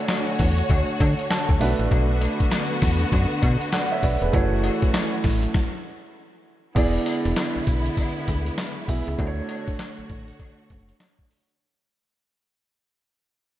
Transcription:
Already playing: D3 A3 D4 F#4 C#5 E5 G#5
0.08 snare, clap, closed hi-hat, cowbell
0.39 E2, kick, open hi-hat
0.58 closed hi-hat
0.70 D2, kick, closed hi-hat, cowbell
1.00 D3, kick, closed hi-hat, cowbell
1.19 closed hi-hat
1.30 A5, snare, clap, closed hi-hat, cowbell
1.49 D2, kick
1.59 B1 D3 A3 B3 D4 F#4 B4 E5, open hi-hat
1.79 A1, closed hi-hat
1.91 B1, kick, closed hi-hat, cowbell
2.21 closed hi-hat, cowbell
2.40 kick, closed hi-hat
2.51 snare, clap, closed hi-hat, cowbell
2.82 E2, kick, snare, open hi-hat
3.01 closed hi-hat
3.12 F#2, kick, closed hi-hat, cowbell
3.42 B2, kick, closed hi-hat, cowbell
3.61 closed hi-hat
3.72 D5 F#5, snare, clap, closed hi-hat, cowbell
3.92 C#5 E5
4.03 B1 B4 D5, kick, open hi-hat
4.21 E1 G#4 B4, closed hi-hat
4.32 F#1 E3 A3 C#4 E4 F#4 C#5, kick, closed hi-hat, cowbell
4.63 closed hi-hat, cowbell
4.82 kick, closed hi-hat
4.94 snare, clap, closed hi-hat, cowbell
5.24 A1, kick, snare, open hi-hat
5.43 closed hi-hat
5.54 kick, snare
6.75 E1 D3 G#3 B3 E4 G#4 D5, kick, closed hi-hat, crash, cowbell
7.06 closed hi-hat, tambourine, cowbell
7.25 E1, closed hi-hat
7.36 snare, clap, closed hi-hat, tambourine, cowbell
7.56 B1
7.67 B1, kick, closed hi-hat, tambourine
7.86 closed hi-hat
7.97 kick, closed hi-hat, tambourine, cowbell
8.28 D2, kick, closed hi-hat, tambourine
8.46 closed hi-hat
8.58 snare, clap, closed hi-hat, tambourine, cowbell
8.88 B1 B3 E4 G#4 E5, kick, open hi-hat, tambourine
9.07 C#2, closed hi-hat
9.18 D2 D3 A3 D4 F#4 C5 C#5, kick, closed hi-hat, cowbell
9.27 C#5
9.49 closed hi-hat, cowbell
9.68 A1, kick, closed hi-hat
9.79 snare, clap, closed hi-hat, cowbell
9.99 A1
10.09 A1, kick, closed hi-hat
10.28 closed hi-hat
10.40 kick, closed hi-hat, cowbell
10.70 F#1, kick, closed hi-hat
10.89 closed hi-hat
11.00 snare, clap, closed hi-hat, cowbell
11.19 kick
11.31 open hi-hat
11.49 closed hi-hat

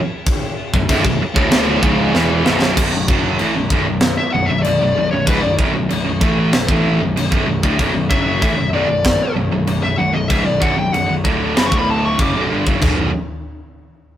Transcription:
0.26 kick, crash
0.73 B0 B1 F#2, kick
0.89 B0 B1 F#2, kick, crash
1.05 B0 B1 F#2, kick
1.21 muted picked electric bass stroke, muted distorted electric guitar stroke
1.36 D1 D2 A2, kick
1.50 D1 D2 A2 D3, snare, crash
1.82 C#1 C#2 G#2 C#3, kick
2.14 E1 E2 B2 E3, snare
2.46 B0 B1 F#2 B2, snare
2.62 snare
2.77 B0 B1 F#2, kick, crash, china
2.93 B0 B1 F#2
3.08 F#1 F#2 C#3 F#3, kick
3.39 A1 A2 E3, china
3.56 B0 B1 F#2
3.70 B0 B1 F#2, kick
3.88 B0 B1 F#2
4.01 snare, china
4.18 E5
4.32 B0 B1 F#2 F#5
4.46 B0 E5
4.50 B1 F#2
4.63 B0 B1 F#2 D5, china
4.79 B0 B1 F#2
4.96 B0 B1 F#2
5.11 B0 B1 F#2 C#5
5.26 C#1 C#2 G#2 B4, kick, china
5.42 B0 B1 F#2 D5
5.59 B0 B1 F#2, kick
5.75 B0 B1 F#2
5.89 B0 B1 F#2, china
5.94 B1
6.04 B0 B1 F#2
6.09 B1 F#2
6.21 A1 A2 E3 A3, kick
6.53 B0 B1 F#2, snare, china
6.68 A1 A2 E3 A3, kick
6.99 B0 B1 F#2
7.16 B0 B1 F#2, china
7.32 B0 B1 F#2, kick
7.47 B0 B1 F#2
7.63 D1 D2 A2, kick
7.79 B0 B1 F#2, kick, china
7.94 B0 B1 F#2
8.10 F#1 F#2 C#3 F#3 E5, kick
8.42 A1 A2 E3, kick, china
8.57 B0 B1 F#2
8.71 B0 B1 F#2 D5
8.88 B0 B1 F#2
9.05 kick, snare, china
9.35 B0 B1 F#2
9.51 B0 B1 F#2
9.67 B0 B1 F#2, china
9.82 B0 B1 F#2 E5
9.98 B0 B1 F#2 F#5
10.13 B0 B1 F#2 D#5
10.29 C#1 C#2 G#2 E5, kick, china
10.44 B0 B1 F#2 D5
10.60 B0 B1 F#2 F#5, kick
10.77 B0 B1 F#2 G5
10.92 B0 B1 F#2 F#5, china
11.06 B1 F#2
11.10 B0
11.24 D1 D2 A2 D3, kick
11.56 F#1 F#2 C#3 B5, snare, china
11.68 D1 D2 A2 C#6
11.72 D3, kick
11.78 B5
11.90 A5
12.05 C#6
12.17 F#1 F#2 C#3, kick, china
12.22 D6
12.34 B0 B1 F#2
12.49 G1 G2 D3
12.65 F#1 F#2 C#3, kick
12.81 B0 B1 F#2 B2, kick, floor tom, splash

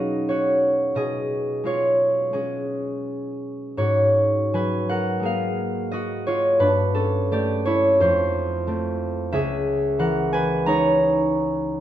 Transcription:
Already playing: B2 F#3 B3 C#4 D#4 F#4 G#4 B4 D#5 F#5
0.29 F#4 C#5
0.95 B2 G#4 D#5
1.64 G#3 F4 C#5
2.33 G#3 C#4 G#4
3.77 G#2 F#4 C#5
4.54 F#3 B4 G#5
4.89 A#4 F#5
5.20 G#3 A#3 G#4
5.25 F5
5.91 F#4 D#5
6.27 F4 C#5
6.59 G2 D4 B4
6.95 C#4 A4
7.32 A3 G4 D5
7.65 E4 C#5
8.00 F2 E4 C5
8.67 A3 C4
9.32 C#2 G#4 E5
9.99 E3 A#4 F#5
10.33 B4 G#5
10.66 G#3 D#4 C#5 A#5

